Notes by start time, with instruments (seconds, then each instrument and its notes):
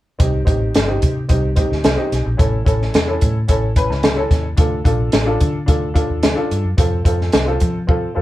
0.19 fingered electric bass C2, upright piano C4 D#4 G4, kick, closed hi-hat
0.45 fingered electric bass A1, upright piano C4 D#4 G4, kick, closed hi-hat
0.75 fingered electric bass G1, snare, closed hi-hat
0.87 upright piano C4 D#4 G4
1.02 fingered electric bass C3, kick, closed hi-hat
1.29 fingered electric bass C2, upright piano C4 D#4 G4, kick, closed hi-hat
1.56 upright piano C4 D#4 G4, kick, closed hi-hat
1.72 fingered electric bass D2, snare
1.84 fingered electric bass C2, snare, closed hi-hat
1.96 upright piano C4 D#4 G4
2.12 fingered electric bass B1, snare, closed hi-hat
2.26 fingered electric bass A#1
2.37 fingered electric bass A1, upright piano C#4 E4 A4, kick, closed hi-hat
2.65 fingered electric bass A1, upright piano C#4 E4 A4, kick, closed hi-hat
2.82 snare
2.94 fingered electric bass E2, snare, closed hi-hat
3.07 upright piano C#4 E4 A4
3.21 fingered electric bass A2, kick, closed hi-hat
3.48 fingered electric bass A1, upright piano C#4 E4 A4, kick, closed hi-hat
3.76 upright piano C#4 E4 B4, kick, closed hi-hat
3.90 fingered electric bass C#2, snare
4.03 snare, closed hi-hat
4.16 upright piano C#4 E4 A4
4.31 fingered electric bass D#2, kick, snare, closed hi-hat
4.57 fingered electric bass D2, upright piano D4 F4 A4, kick, closed hi-hat
4.84 fingered electric bass A#1, upright piano D4 F4 A4, kick, closed hi-hat
5.12 fingered electric bass A1, snare, closed hi-hat
5.25 upright piano D4 F4 A4
5.40 fingered electric bass D3, kick, closed hi-hat
5.66 fingered electric bass D2, upright piano D4 F4 A4, kick, closed hi-hat
5.94 upright piano D4 F4 A4, kick, closed hi-hat
6.10 fingered electric bass D#2
6.23 fingered electric bass D2, snare, closed hi-hat
6.35 upright piano D4 F4 A4
6.51 fingered electric bass G2, closed hi-hat
6.65 fingered electric bass F#2
6.77 fingered electric bass F2, upright piano C4 F4 A4, kick, closed hi-hat
7.04 fingered electric bass F2, upright piano C4 F4 A4, kick, closed hi-hat
7.21 snare
7.32 fingered electric bass C2, snare, closed hi-hat
7.46 upright piano C4 F4 A4
7.60 fingered electric bass F3, kick, closed hi-hat
7.87 upright piano C4 F4 A4, kick
8.15 fingered electric bass F2, upright piano C4 F4 A4 A5